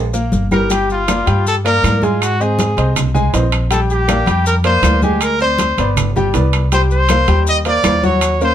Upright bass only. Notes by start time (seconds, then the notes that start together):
Already playing: A#1
0.32 G1
1.27 G2
1.83 G#2
2.77 C2
3.33 A#1
4.26 F2
4.82 D2
5.78 G1
6.34 C2
7.28 D#2
7.84 D#2